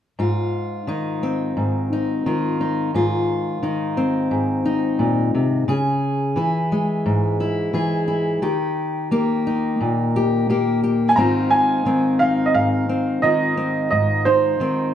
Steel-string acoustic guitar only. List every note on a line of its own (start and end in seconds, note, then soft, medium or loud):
0.19 1.56 G#2 medium
0.19 2.25 F4 soft
0.87 2.25 D#3 soft
0.87 1.91 D#4 soft
1.23 2.90 C4 soft
1.57 2.90 G#2 soft
1.93 2.59 D#4 soft
2.26 3.61 D#3 soft
2.26 2.94 F4 soft
2.61 2.90 D#4 soft
2.94 4.30 G#2 medium
2.94 5.68 F4 medium
3.63 5.68 D#3 soft
3.63 4.64 D#4 soft
3.97 5.65 C4 soft
4.31 5.64 G#2 soft
4.65 5.64 D#4 soft
4.99 5.34 A#2 soft
5.35 5.67 C3 soft
5.68 6.37 C#3 medium
5.68 7.73 G#4 medium
6.36 7.72 E3 medium
6.36 7.39 E4 soft
6.72 8.43 G#3 soft
7.06 8.39 G#2 soft
7.40 8.07 E4 soft
7.73 8.38 E3 soft
7.73 8.39 G#4 soft
8.08 8.38 E4 soft
8.42 11.16 D#3 medium
8.42 9.11 G4 medium
9.11 10.48 A#3 medium
9.11 10.15 G4 medium
9.47 11.14 D#4 soft
9.81 11.18 A#2 soft
10.16 10.49 G4 medium
10.50 11.14 A#3 medium
10.50 10.82 G4 soft
10.84 11.14 G4 soft
11.17 12.54 G#2 medium
11.17 11.84 D#3 soft
11.17 11.86 C4 soft
11.17 11.51 D#4 soft
11.17 13.23 F4 soft
11.52 12.21 D#4 soft
11.85 13.22 D#3 soft
11.85 12.88 C4 soft
12.22 13.89 D#4 soft
12.55 13.88 G#2 soft
12.89 13.56 C4 soft
13.23 14.59 D#3 soft
13.23 14.94 F4 soft
13.57 13.88 C4 soft
13.92 14.94 G#2 medium
14.26 14.94 D#4 soft
14.60 14.94 D#3 soft
14.60 14.94 C4 soft